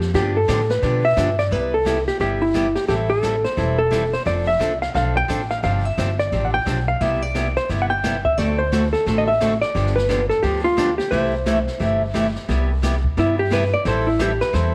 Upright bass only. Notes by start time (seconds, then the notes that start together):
Already playing: F2
0.14 G2
0.48 A2
0.83 B2
1.17 G2
1.51 C2
2.20 G1
2.88 A1
3.57 E1
4.26 F1
4.60 C2
4.95 B1
5.29 A1
5.63 G1
5.98 G1
6.32 A1
6.66 B1
7.01 C2
7.69 G1
8.38 D2
9.06 A1
9.75 G1
10.43 D2
11.12 C2
11.80 G1
12.49 C2
13.17 G2
13.85 A1
14.54 E2